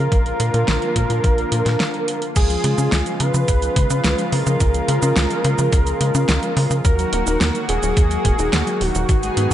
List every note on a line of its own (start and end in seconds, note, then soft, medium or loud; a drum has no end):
0.00 2.32 F4 loud
0.00 2.25 A#4 loud
0.12 0.33 A#1 loud
0.12 2.34 D3 medium
0.12 2.34 F3 medium
0.12 2.34 A#3 medium
0.12 kick loud
0.12 closed hi-hat medium
0.26 closed hi-hat soft
0.40 0.50 A#2 medium
0.40 closed hi-hat medium
0.54 0.64 A#2 medium
0.54 closed hi-hat medium
0.68 0.78 A#1 loud
0.68 snare loud
0.68 closed hi-hat medium
0.82 closed hi-hat soft
0.96 1.06 A#2 loud
0.96 kick medium
0.96 closed hi-hat medium
1.10 1.20 A#2 medium
1.10 closed hi-hat soft
1.24 1.45 A#1 loud
1.24 kick loud
1.24 closed hi-hat medium
1.38 closed hi-hat soft
1.52 1.62 A#2 medium
1.52 closed hi-hat medium
1.66 1.76 A#2 loud
1.66 snare soft
1.66 closed hi-hat medium
1.80 snare loud
1.80 closed hi-hat medium
1.94 closed hi-hat soft
2.08 closed hi-hat medium
2.22 closed hi-hat medium
2.36 2.57 C#2 loud
2.36 2.48 C#3 medium
2.36 6.81 C#3 medium
2.36 6.81 F3 medium
2.36 6.81 G#3 medium
2.36 6.81 F4 loud
2.36 3.22 G#4 loud
2.36 kick loud
2.36 closed hi-hat medium
2.36 crash loud
2.36 cabasa soft
2.50 2.62 F3 medium
2.50 closed hi-hat soft
2.50 cabasa soft
2.64 2.75 C#3 loud
2.64 2.76 G#3 medium
2.64 closed hi-hat loud
2.78 2.89 C#3 medium
2.78 2.85 C#4 loud
2.78 closed hi-hat soft
2.78 cabasa medium
2.92 3.03 C#2 loud
2.92 3.05 G#3 medium
2.92 snare loud
2.92 closed hi-hat medium
2.92 cabasa soft
3.06 3.19 F3 medium
3.06 closed hi-hat soft
3.06 cabasa soft
3.20 3.33 C#3 medium
3.20 3.31 C#3 loud
3.20 4.34 B4 loud
3.20 closed hi-hat loud
3.34 3.45 C#3 medium
3.34 3.46 F3 medium
3.34 closed hi-hat soft
3.34 cabasa medium
3.48 3.69 C#2 medium
3.48 3.60 C#3 medium
3.48 kick loud
3.48 closed hi-hat medium
3.48 cabasa soft
3.62 3.74 F3 medium
3.62 closed hi-hat soft
3.62 cabasa soft
3.76 3.87 C#3 loud
3.76 3.88 G#3 medium
3.76 kick loud
3.76 closed hi-hat loud
3.90 4.01 C#3 loud
3.90 3.98 C#4 loud
3.90 closed hi-hat soft
3.90 cabasa medium
4.04 4.15 C#2 medium
4.04 4.18 G#3 medium
4.04 snare loud
4.04 closed hi-hat medium
4.04 cabasa soft
4.18 4.32 F3 medium
4.18 closed hi-hat soft
4.18 cabasa soft
4.32 4.46 C#3 medium
4.32 4.43 C#3 medium
4.32 6.73 A#4 loud
4.32 open hi-hat medium
4.46 4.57 C#3 loud
4.46 4.58 F3 medium
4.46 closed hi-hat soft
4.46 cabasa medium
4.60 4.81 C#2 loud
4.60 4.72 C#3 medium
4.60 kick loud
4.60 closed hi-hat medium
4.60 cabasa soft
4.74 4.86 F3 medium
4.74 closed hi-hat soft
4.74 cabasa soft
4.88 4.99 C#3 medium
4.88 5.00 G#3 medium
4.88 closed hi-hat loud
5.02 5.13 C#3 medium
5.02 5.10 C#4 loud
5.02 closed hi-hat soft
5.02 cabasa medium
5.16 5.27 C#2 loud
5.16 5.30 G#3 medium
5.16 snare loud
5.16 closed hi-hat medium
5.16 cabasa soft
5.30 5.44 F3 medium
5.30 closed hi-hat soft
5.30 cabasa soft
5.44 5.58 C#3 medium
5.44 5.55 C#3 loud
5.44 closed hi-hat loud
5.58 5.69 C#3 medium
5.58 5.71 F3 medium
5.58 closed hi-hat soft
5.58 cabasa medium
5.72 5.93 C#2 loud
5.72 5.85 C#3 medium
5.72 kick loud
5.72 closed hi-hat medium
5.72 cabasa soft
5.87 5.99 F3 medium
5.87 closed hi-hat soft
5.87 cabasa soft
6.00 6.11 C#3 medium
6.00 6.13 G#3 medium
6.00 closed hi-hat loud
6.15 6.25 C#3 loud
6.15 6.22 C#4 loud
6.15 closed hi-hat soft
6.15 cabasa medium
6.28 6.39 C#2 loud
6.28 6.42 G#3 medium
6.28 snare loud
6.28 closed hi-hat medium
6.28 cabasa soft
6.43 6.56 F3 medium
6.43 closed hi-hat soft
6.43 cabasa soft
6.57 6.70 C#3 medium
6.57 6.67 C#3 loud
6.57 open hi-hat medium
6.71 6.81 C#3 medium
6.71 6.83 F3 medium
6.71 closed hi-hat soft
6.71 cabasa medium
6.85 7.06 D#2 loud
6.85 6.97 D#3 medium
6.85 9.54 D#3 medium
6.85 9.07 F#3 medium
6.85 9.07 A#3 medium
6.85 9.07 F#4 loud
6.85 7.58 A#4 loud
6.85 kick loud
6.85 closed hi-hat medium
6.85 cabasa soft
6.99 7.11 F#3 medium
6.99 closed hi-hat soft
6.99 cabasa soft
7.13 7.23 D#1 loud
7.13 7.25 A#3 medium
7.13 closed hi-hat loud
7.26 7.37 D#1 medium
7.26 7.34 D#4 loud
7.26 closed hi-hat soft
7.26 cabasa medium
7.40 7.51 D#2 loud
7.40 7.54 A#3 medium
7.40 snare loud
7.40 closed hi-hat medium
7.40 cabasa soft
7.54 7.68 F#3 medium
7.54 closed hi-hat soft
7.54 cabasa soft
7.68 7.79 D#1 loud
7.68 7.82 D#3 medium
7.68 8.83 G#4 loud
7.68 closed hi-hat loud
7.83 7.93 D#1 medium
7.83 7.95 F#3 medium
7.83 closed hi-hat soft
7.83 cabasa medium
7.97 8.18 D#2 medium
7.97 8.09 D#3 medium
7.97 kick loud
7.97 closed hi-hat medium
7.97 cabasa soft
8.11 8.23 F#3 medium
8.11 closed hi-hat soft
8.11 cabasa soft
8.25 8.35 D#1 loud
8.25 8.37 A#3 medium
8.25 kick loud
8.25 closed hi-hat medium
8.39 8.49 D#1 loud
8.39 8.46 D#4 loud
8.39 closed hi-hat soft
8.39 cabasa medium
8.53 8.63 D#2 medium
8.53 8.66 A#3 medium
8.53 snare loud
8.53 closed hi-hat medium
8.53 cabasa soft
8.67 8.80 F#3 medium
8.67 closed hi-hat soft
8.67 cabasa soft
8.81 8.91 D#1 medium
8.81 8.94 D#3 medium
8.81 9.54 F#4 loud
8.81 open hi-hat medium
8.95 9.05 D#1 loud
8.95 9.07 F#3 medium
8.95 closed hi-hat soft
8.95 cabasa medium
9.09 9.30 G#1 loud
9.09 9.21 D#3 medium
9.09 9.54 G#3 medium
9.09 9.54 B3 medium
9.09 9.54 G#4 medium
9.09 kick loud
9.09 closed hi-hat medium
9.09 cabasa soft
9.23 9.35 G#3 medium
9.23 closed hi-hat soft
9.23 cabasa soft
9.37 9.47 G#2 loud
9.37 9.49 B3 medium
9.37 closed hi-hat medium